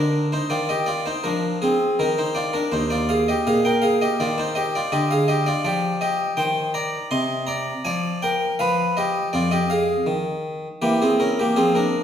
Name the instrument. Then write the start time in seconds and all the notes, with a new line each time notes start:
harpsichord
Already playing: D3 D4 A#4
0.32 D#4 C5
0.50 D#3 F4 D5
0.69 G4 D#5
0.86 F4 D5
1.06 D#4 C5
1.24 F3 D4 A#4
1.62 C4 G#4
1.99 D#3 D#4 A#4
2.18 D#4 C5
2.35 F4 D5
2.53 D4 A#4
2.72 D#2 D#4 C5
2.90 F4 D5
3.09 G#4 F5
3.28 G4 D#5
3.47 A#2 G#4 F5
3.65 A#4 G5
3.82 G#4 F5
4.02 G4 D#5
4.20 D#3 F4 D5
4.38 D#4 C5
4.55 G4 D#5
4.75 F4 D5
4.92 D3 G4 D#5
5.11 G#4 F5
5.28 G4 D#5
5.46 F4 D5
5.65 F3 G4 D5
6.01 G4 D#5
6.37 D#3 C5 G5
6.74 D5 A#5
7.11 C3 D#5 C6
7.47 D5 A#5
7.85 F3 D5 G#5
8.22 A#4 G5
8.59 F3 B4 F5
8.97 G4 D#5
9.33 F2 F4 D5
9.51 G4 D#5
9.70 G#4 F5
10.07 D#3
10.82 E3 A#3 G4
11.02 C4 G#4
11.20 C#4 A#4
11.39 A#3 G4
11.56 F3 C4 G#4
11.75 D4 A#4